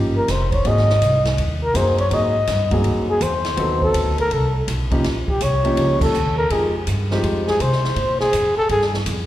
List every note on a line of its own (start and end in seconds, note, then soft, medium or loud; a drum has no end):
0.00 0.27 G1 medium
0.00 0.26 F3 medium
0.00 0.26 A#3 medium
0.00 0.26 C#4 medium
0.00 0.26 D#4 medium
0.00 0.26 G4 medium
0.17 0.33 A#4 medium
0.28 0.64 F1 medium
0.28 0.52 C5 medium
0.28 kick soft
0.28 snare soft
0.28 hi-hat pedal medium
0.28 ride medium
0.52 0.69 C#5 medium
0.52 kick medium
0.52 ride soft
0.65 1.01 G#1 medium
0.65 0.86 F#3 medium
0.65 0.87 A#3 medium
0.65 0.87 C4 medium
0.65 0.87 D#4 medium
0.65 0.87 G#4 medium
0.65 1.27 D#5 loud
0.65 kick soft
0.65 ride medium
0.77 snare soft
0.90 snare soft
1.02 1.37 C2 medium
1.02 kick soft
1.02 hi-hat pedal medium
1.02 ride medium
1.25 snare medium
1.25 ride soft
1.38 1.74 D#2 medium
1.38 kick soft
1.38 ride medium
1.64 1.78 A#4 medium
1.74 2.10 F#2 medium
1.74 1.96 F#3 medium
1.74 1.96 A#3 medium
1.74 1.96 C4 medium
1.74 1.97 D#4 medium
1.74 1.97 G#4 medium
1.74 1.99 C5 medium
1.74 kick soft
1.74 hi-hat pedal medium
1.74 ride medium
1.98 2.16 C#5 medium
1.98 ride soft
2.10 2.47 G#2 medium
2.10 2.32 F#3 medium
2.10 2.33 A#3 medium
2.10 2.33 C4 medium
2.10 2.33 D#4 medium
2.10 2.33 G#4 medium
2.10 2.73 D#5 medium
2.10 kick soft
2.10 ride medium
2.47 2.83 G2 medium
2.47 kick soft
2.47 snare soft
2.47 hi-hat pedal medium
2.47 ride medium
2.71 3.18 F#3 medium
2.71 3.19 A#3 medium
2.71 3.19 C4 medium
2.71 3.19 D#4 medium
2.71 3.19 G#4 medium
2.71 kick medium
2.71 ride soft
2.84 3.20 F#2 medium
2.84 kick soft
2.84 ride medium
3.10 3.24 G#4 medium
3.21 3.56 E2 medium
3.21 3.82 C5 medium
3.21 kick soft
3.21 hi-hat pedal medium
3.21 ride medium
3.45 snare soft
3.45 ride soft
3.57 3.93 D#2 medium
3.57 4.13 F#3 medium
3.57 4.13 B3 medium
3.57 4.14 C4 medium
3.57 4.14 D#4 medium
3.57 4.14 A4 medium
3.57 kick soft
3.57 ride medium
3.82 4.17 A4 medium
3.82 kick soft
3.94 4.30 D2 medium
3.94 kick soft
3.94 hi-hat pedal medium
3.94 ride medium
4.18 4.35 A#4 loud
4.18 ride soft
4.31 4.67 C2 medium
4.31 4.56 A4 medium
4.31 kick soft
4.31 ride medium
4.68 5.03 B1 medium
4.68 kick soft
4.68 hi-hat pedal medium
4.68 ride medium
4.91 5.02 F3 medium
4.91 5.03 A#3 medium
4.91 5.03 C#4 medium
4.91 5.03 D#4 medium
4.91 5.03 G4 medium
4.91 kick medium
4.91 ride soft
5.04 5.40 A#1 medium
5.04 kick soft
5.04 snare soft
5.04 ride medium
5.28 5.45 G4 medium
5.28 kick medium
5.41 5.76 C2 medium
5.41 6.01 C#5 loud
5.41 kick soft
5.41 hi-hat pedal medium
5.41 ride medium
5.64 6.11 F3 medium
5.64 6.11 A#3 medium
5.64 6.12 C#4 medium
5.64 6.12 D#4 medium
5.64 6.12 G4 medium
5.64 ride soft
5.77 6.13 C#2 medium
5.77 kick soft
5.77 ride medium
6.01 6.35 A4 medium
6.01 kick medium
6.01 crash medium
6.14 6.49 D#2 medium
6.14 hi-hat pedal medium
6.38 6.53 A#4 medium
6.50 6.86 F2 medium
6.50 6.72 F3 medium
6.50 6.72 G#3 medium
6.50 6.72 C4 soft
6.50 6.73 D#4 medium
6.50 6.73 G4 medium
6.50 6.75 G#4 medium
6.50 kick soft
6.50 ride medium
6.87 7.22 G2 medium
6.87 kick soft
6.87 hi-hat pedal medium
6.87 ride medium
7.11 7.58 F3 medium
7.11 7.58 G#3 medium
7.11 7.58 C4 medium
7.11 7.58 D#4 medium
7.11 7.59 G4 medium
7.11 snare soft
7.23 7.59 F2 medium
7.23 kick soft
7.23 ride medium
7.48 7.63 G#4 medium
7.48 snare soft
7.60 7.96 C3 medium
7.60 8.20 C5 medium
7.60 kick soft
7.60 hi-hat pedal medium
7.60 ride medium
7.72 snare soft
7.84 snare soft
7.96 8.32 A#2 medium
7.96 kick soft
7.96 ride medium
8.20 8.54 G#4 medium
8.20 snare soft
8.33 8.55 F2 medium
8.33 kick soft
8.33 hi-hat pedal medium
8.33 ride medium
8.57 8.69 A4 loud
8.57 muted upright bass stroke soft
8.69 9.05 G2 medium
8.69 8.85 G#4 medium
8.69 kick soft
8.69 ride medium
8.82 snare soft
8.94 snare soft
9.06 9.26 F2 medium
9.06 kick soft
9.06 hi-hat pedal medium
9.06 ride medium